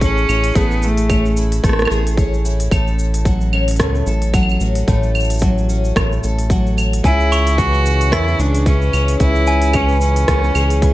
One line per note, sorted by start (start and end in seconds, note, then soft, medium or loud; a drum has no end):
0.00 0.26 A1 loud
0.00 0.56 A3 medium
0.00 1.10 C#4 medium
0.00 0.58 C#4 loud
0.00 0.29 E4 medium
0.00 0.56 G#4 medium
0.00 kick loud
0.00 open hi-hat soft
0.00 shaker soft
0.18 shaker soft
0.29 0.52 A1 medium
0.29 1.37 E4 medium
0.29 claves medium
0.29 shaker medium
0.44 open hi-hat medium
0.44 shaker soft
0.52 1.60 A1 loud
0.52 kick loud
0.52 open hi-hat soft
0.52 shaker soft
0.56 1.64 A3 medium
0.56 0.86 B3 loud
0.56 1.90 G#4 medium
0.56 shaker soft
0.61 shaker soft
0.71 shaker soft
0.83 1.38 A3 medium
0.83 shaker medium
0.98 open hi-hat medium
0.98 shaker soft
1.10 2.18 C#4 medium
1.10 kick loud
1.10 open hi-hat soft
1.10 claves medium
1.10 shaker soft
1.26 shaker soft
1.37 2.45 E4 medium
1.37 shaker medium
1.52 open hi-hat medium
1.52 shaker soft
1.64 1.87 A1 medium
1.64 3.26 A3 medium
1.64 kick loud
1.64 cross-stick soft
1.64 open hi-hat soft
1.64 shaker soft
1.69 cross-stick soft
1.73 cross-stick medium
1.79 cross-stick medium
1.79 shaker soft
1.82 cross-stick medium
1.82 claves medium
1.87 2.69 A1 medium
1.87 2.72 G#4 medium
1.87 cross-stick medium
1.91 shaker medium
2.07 open hi-hat soft
2.07 shaker soft
2.17 3.53 C#4 medium
2.17 kick loud
2.17 open hi-hat soft
2.17 shaker soft
2.34 shaker soft
2.45 3.30 E4 medium
2.45 shaker medium
2.60 open hi-hat medium
2.60 shaker soft
2.71 3.81 A1 loud
2.71 3.79 A2 medium
2.71 4.06 A4 medium
2.71 kick loud
2.71 open hi-hat soft
2.71 claves medium
2.71 shaker soft
2.87 shaker soft
2.99 shaker medium
3.14 open hi-hat medium
3.14 shaker soft
3.25 4.33 F#3 medium
3.25 kick loud
3.25 open hi-hat soft
3.25 shaker soft
3.41 shaker soft
3.53 4.61 C#4 medium
3.53 claves medium
3.68 open hi-hat medium
3.68 shaker soft
3.71 open hi-hat soft
3.76 4.03 C#2 medium
3.76 kick loud
3.76 cross-stick medium
3.76 open hi-hat soft
3.80 4.87 A2 medium
3.80 open hi-hat soft
3.80 shaker soft
3.95 shaker soft
4.07 4.58 A1 loud
4.07 4.88 A4 medium
4.07 shaker medium
4.22 open hi-hat soft
4.22 shaker soft
4.34 5.41 F#3 medium
4.34 kick loud
4.34 open hi-hat soft
4.34 claves medium
4.34 shaker soft
4.43 claves medium
4.49 claves soft
4.49 shaker soft
4.60 4.84 A1 medium
4.60 5.69 C#4 medium
4.60 shaker medium
4.75 open hi-hat medium
4.75 shaker soft
4.88 5.93 A1 loud
4.88 5.95 A2 medium
4.88 6.22 A4 medium
4.88 kick loud
4.88 open hi-hat soft
4.88 shaker soft
5.03 shaker soft
5.15 claves medium
5.15 shaker soft
5.20 shaker soft
5.24 shaker soft
5.30 open hi-hat medium
5.30 shaker medium
5.34 shaker medium
5.37 shaker soft
5.39 6.50 F#3 medium
5.39 kick loud
5.39 open hi-hat soft
5.39 shaker medium
5.39 shaker soft
5.43 shaker soft
5.58 shaker soft
5.69 6.77 C#4 medium
5.69 shaker medium
5.85 shaker soft
5.96 6.19 A1 medium
5.96 7.10 A2 medium
5.96 kick loud
5.96 cross-stick medium
5.96 open hi-hat soft
5.96 claves medium
5.96 shaker soft
6.12 shaker soft
6.24 7.02 A1 medium
6.24 7.05 A4 medium
6.24 shaker medium
6.39 open hi-hat soft
6.39 shaker soft
6.50 7.11 F#3 medium
6.50 kick loud
6.50 open hi-hat soft
6.50 shaker soft
6.67 shaker soft
6.77 7.85 C#4 medium
6.77 claves medium
6.77 shaker medium
6.93 open hi-hat medium
6.93 shaker soft
7.04 8.14 C#2 loud
7.04 8.12 C#3 medium
7.04 7.60 E4 loud
7.04 8.39 G#4 medium
7.04 7.31 G#5 medium
7.04 kick loud
7.04 open hi-hat soft
7.04 shaker soft
7.21 shaker soft
7.32 7.58 C#6 loud
7.32 claves medium
7.32 shaker medium
7.47 open hi-hat medium
7.47 shaker soft
7.58 8.66 E3 medium
7.58 8.14 F#4 loud
7.58 kick medium
7.58 open hi-hat soft
7.58 shaker soft
7.74 shaker soft
7.86 8.93 C#4 medium
7.86 shaker medium
8.01 open hi-hat medium
8.01 shaker soft
8.12 8.35 E2 medium
8.12 9.20 C#3 medium
8.12 8.42 E4 loud
8.12 kick loud
8.12 cross-stick medium
8.12 open hi-hat soft
8.12 claves medium
8.12 shaker soft
8.28 shaker soft
8.39 8.90 C#2 loud
8.39 8.68 D4 medium
8.39 9.20 G#4 medium
8.39 shaker medium
8.55 open hi-hat soft
8.55 shaker soft
8.66 9.73 E3 medium
8.66 9.20 C#4 medium
8.66 kick loud
8.66 open hi-hat soft
8.66 shaker soft
8.82 shaker soft
8.93 9.17 C#2 medium
8.93 10.01 C#4 medium
8.93 claves medium
8.93 shaker medium
9.08 open hi-hat soft
9.08 shaker soft
9.20 10.25 C#2 loud
9.20 10.28 C#3 medium
9.20 9.77 E4 loud
9.20 10.54 G#4 medium
9.20 kick loud
9.20 open hi-hat soft
9.20 shaker soft
9.36 shaker soft
9.47 9.64 G#5 loud
9.47 shaker medium
9.62 open hi-hat medium
9.62 shaker soft
9.73 10.82 E3 medium
9.73 10.01 C#4 medium
9.73 kick medium
9.73 open hi-hat soft
9.73 claves medium
9.73 shaker soft
9.89 shaker soft
9.91 shaker soft
9.95 shaker soft
9.98 shaker soft
10.00 shaker soft
10.01 10.94 C#4 medium
10.01 shaker medium
10.16 open hi-hat medium
10.16 shaker soft
10.28 10.51 C#2 medium
10.28 10.94 C#3 medium
10.28 kick loud
10.28 cross-stick medium
10.28 open hi-hat soft
10.28 shaker soft
10.44 shaker soft
10.55 10.94 C#2 medium
10.55 10.94 G#4 medium
10.55 claves medium
10.55 shaker medium
10.70 open hi-hat medium
10.70 shaker soft
10.82 10.94 E3 medium
10.82 kick loud
10.82 open hi-hat soft
10.82 shaker soft